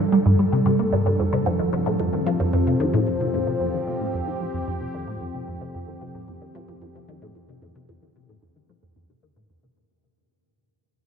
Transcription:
Already playing: analog synth pad G3 D4 A4 A#4
0.12 synth arpeggio sound G3
0.26 synth arpeggio sound G2
0.39 synth arpeggio sound G3
0.53 synth arpeggio sound C3
0.66 synth arpeggio sound C3
0.79 synth arpeggio sound A#3
0.93 synth arpeggio sound G2
1.06 synth arpeggio sound G2
1.19 synth arpeggio sound F2, analog synth pad F3
1.33 synth arpeggio sound C3
1.46 synth arpeggio sound F2
1.59 synth arpeggio sound D#3
1.67 analog synth pad C4
1.73 synth arpeggio sound C3
1.86 synth arpeggio sound A2
2.00 synth arpeggio sound F2
2.05 analog synth pad G4
2.13 synth arpeggio sound D#3
2.27 synth arpeggio sound F3
2.40 synth arpeggio sound F2
2.53 synth arpeggio sound F2
2.67 synth arpeggio sound C3
2.80 synth arpeggio sound D#3
2.94 synth arpeggio sound A2
3.07 synth arpeggio sound F2
3.20 synth arpeggio sound C3
3.34 synth arpeggio sound F2
3.47 synth arpeggio sound C3
3.61 synth arpeggio sound F2
3.74 synth arpeggio sound D#3
3.87 synth arpeggio sound C3
4.01 synth arpeggio sound A2
4.14 synth arpeggio sound F2
4.27 synth arpeggio sound D#3
4.41 synth arpeggio sound F3
4.54 synth arpeggio sound F2
4.67 synth arpeggio sound F2
4.81 synth arpeggio sound C3
4.94 synth arpeggio sound D#3
5.08 synth arpeggio sound A2
5.21 synth arpeggio sound F2
5.34 synth arpeggio sound C3
5.48 synth arpeggio sound F2
5.61 synth arpeggio sound C3
5.75 synth arpeggio sound F2
5.88 synth arpeggio sound D#3
6.02 synth arpeggio sound C3
6.15 synth arpeggio sound A2
6.28 synth arpeggio sound F2
6.42 synth arpeggio sound D#3
6.55 synth arpeggio sound F3
6.68 synth arpeggio sound F2
6.82 synth arpeggio sound F2
6.95 synth arpeggio sound C3
7.09 synth arpeggio sound D#3
7.22 synth arpeggio sound A2
7.35 synth arpeggio sound F2
7.49 synth arpeggio sound C3
7.62 synth arpeggio sound F2
7.75 synth arpeggio sound C3
7.89 synth arpeggio sound F2
8.02 synth arpeggio sound D#3
8.16 synth arpeggio sound C3
8.29 synth arpeggio sound A2
8.43 synth arpeggio sound F2
8.56 synth arpeggio sound D#3
8.69 synth arpeggio sound F3
8.83 synth arpeggio sound F2
8.96 synth arpeggio sound F2
9.10 synth arpeggio sound C3
9.23 synth arpeggio sound D#3
9.36 synth arpeggio sound A2
9.50 synth arpeggio sound F2
9.63 synth arpeggio sound C3

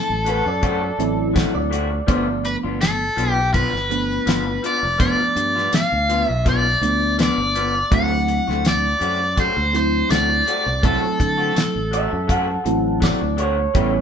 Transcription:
Already playing: tine electric piano F#3 A3 C4 E4, overdriven electric guitar A4
0.10 fingered electric bass A1
0.25 clean electric guitar F#3 A3 C4 F#4 B4, closed hi-hat
0.46 fingered electric bass F#2, clean electric guitar D5, muted clean electric guitar stroke
0.61 clean electric guitar F#3 A3 C4 F#4, kick, closed hi-hat
0.82 muted clean electric guitar stroke
0.98 fingered electric bass A1, tine electric piano F#3 A3 C4 E4, muted clean electric guitar stroke, closed hi-hat
1.34 clean electric guitar F#3 A3 C4 F#4, kick, snare, closed hi-hat, tambourine
1.55 fingered electric bass D2, clean electric guitar D5, muted clean electric guitar stroke
1.70 clean electric guitar F#3 A3 C4 F#4, closed hi-hat
1.91 muted clean electric guitar stroke
2.07 fingered electric bass G1, tine electric piano F3 A3 B3 D4, clean electric guitar F3 B3 D4 F4 D5, kick, closed hi-hat
2.28 muted clean electric guitar stroke
2.43 overdriven electric guitar B4, muted clean electric guitar stroke, closed hi-hat
2.63 fingered electric bass G1, clean electric guitar B3 D4 F4
2.80 overdriven electric guitar A4, muted clean electric guitar stroke, snare, closed hi-hat, tambourine
3.16 fingered electric bass B1, clean electric guitar F3 B3 D4 F4, closed hi-hat
3.32 overdriven electric guitar G4
3.37 muted clean electric guitar stroke
3.53 clean electric guitar F3 B3 D4 F4, overdriven electric guitar B4, kick, closed hi-hat
3.73 fingered electric bass G1, muted clean electric guitar stroke, snare
3.90 tine electric piano F3 A3 B3 D4, muted clean electric guitar stroke, closed hi-hat
4.26 fingered electric bass G1, clean electric guitar F3 B3 D4 F4, snare, closed hi-hat, tambourine
4.47 muted clean electric guitar stroke
4.63 clean electric guitar F3 B3 D4 F4, overdriven electric guitar D5, closed hi-hat
4.83 fingered electric bass F1, muted clean electric guitar stroke
4.98 clean electric guitar F3 B3 D4 F4, tine electric piano F3 A3 B3 D4, overdriven electric guitar D5, kick, closed hi-hat
5.19 muted clean electric guitar stroke
5.35 fingered electric bass G2, muted clean electric guitar stroke, closed hi-hat
5.55 clean electric guitar B3 D4 F4, snare
5.73 overdriven electric guitar F5, muted clean electric guitar stroke, muted fingered electric bass stroke, snare, closed hi-hat, tambourine
5.92 fingered electric bass D2
6.08 clean electric guitar F3 B3 D4 F4, closed hi-hat
6.26 fingered electric bass B1, overdriven electric guitar E5, muted clean electric guitar stroke
6.45 clean electric guitar F3 B3 D4 F4, overdriven electric guitar D5, kick, closed hi-hat
6.65 muted clean electric guitar stroke
6.81 fingered electric bass D2, tine electric piano F3 A3 B3 D4, muted clean electric guitar stroke, closed hi-hat
7.18 clean electric guitar F3 B3 D4 F4, snare, closed hi-hat, tambourine
7.22 overdriven electric guitar D5
7.38 fingered electric bass G1, muted clean electric guitar stroke
7.55 clean electric guitar F3 B3 D4 F4, closed hi-hat
7.74 muted clean electric guitar stroke
7.90 fingered electric bass D2, tine electric piano F#3 A3 C4 E4, clean electric guitar F#3 A3 C4 F#4, overdriven electric guitar F#5, kick, closed hi-hat
8.12 muted clean electric guitar stroke
8.28 muted clean electric guitar stroke, closed hi-hat
8.47 fingered electric bass D2, clean electric guitar A3 C4 F#4, snare
8.64 overdriven electric guitar D5, muted clean electric guitar stroke, snare, closed hi-hat, tambourine
8.99 fingered electric bass F#2, clean electric guitar F#3 A3 C4 F#4, closed hi-hat
9.20 muted clean electric guitar stroke
9.36 clean electric guitar F#3 A3 C4 F#4, overdriven electric guitar C5, kick, closed hi-hat
9.57 fingered electric bass D2, muted clean electric guitar stroke
9.72 tine electric piano F#3 A3 C4 E4, muted clean electric guitar stroke, closed hi-hat
9.76 overdriven electric guitar C5
10.09 fingered electric bass D2, clean electric guitar F#3 A3 C4 F#4, overdriven electric guitar D5, snare, closed hi-hat, tambourine
10.30 muted clean electric guitar stroke
10.46 clean electric guitar F#3 A3 C4 F#4, closed hi-hat
10.66 fingered electric bass C2, muted clean electric guitar stroke
10.82 clean electric guitar F#3 A3 C4 F#4, tine electric piano F#3 A3 C4 E4, overdriven electric guitar A4, kick, closed hi-hat
11.03 muted clean electric guitar stroke
11.18 fingered electric bass D3, muted clean electric guitar stroke, kick, closed hi-hat
11.38 clean electric guitar A3 C4 F#4
11.55 muted clean electric guitar stroke, muted fingered electric bass stroke, snare, closed hi-hat, tambourine
11.76 fingered electric bass A1
11.91 clean electric guitar F#3 A3 C4 F#4 E5, closed hi-hat
12.12 fingered electric bass F#2, muted clean electric guitar stroke
12.28 clean electric guitar F#3 A3 C4 F#4, kick, closed hi-hat
12.32 clean electric guitar F#5
12.48 muted clean electric guitar stroke
12.64 fingered electric bass A1, tine electric piano F#3 A3 C4 E4, muted clean electric guitar stroke, closed hi-hat
13.00 clean electric guitar F#3 A3 C4 F#4 D5, kick, snare, closed hi-hat, tambourine
13.21 fingered electric bass D2, muted clean electric guitar stroke
13.37 clean electric guitar F#3 A3 C4 F#4 C#5, closed hi-hat
13.57 muted clean electric guitar stroke
13.74 fingered electric bass A1, clean electric guitar E3 A3 C#4 G4, tine electric piano G3 B3 C#4 E4, kick, closed hi-hat
13.94 muted clean electric guitar stroke

